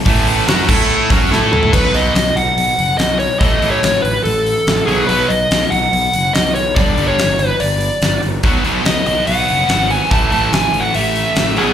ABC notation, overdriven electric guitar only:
X:1
M:4/4
L:1/8
Q:1/4=143
K:Bmix
V:1 name="Overdriven electric guitar" clef=bass
[A,,E,A,]2 [F,CF] [A,EA]2 [F,CF] [A,EA]2 | [B,,F,B,] [B,,F,B,] z6 | [A,,E,A,] [A,,E,A,] z4 z [B,,F,B,] | [B,,F,B,] z6 z |
[=G,,=D,=G,] [G,,D,G,] z6 | [B,,F,B,] [B,,F,B,] z6 | [A,,E,A,] [A,,E,A,] z4 z [B,,F,B,] |]